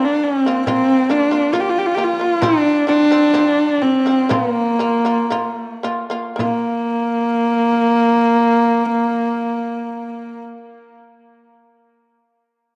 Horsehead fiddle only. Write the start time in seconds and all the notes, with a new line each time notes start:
0.04 D4
0.24 C4
0.67 C4
1.10 D4
1.53 F4
1.60 G4
1.69 F4
1.78 G4
1.86 F4
1.94 G4
2.04 F4
2.41 D4
2.88 D4
3.82 C4
4.32 B3
4.51 A#3
6.39 A#3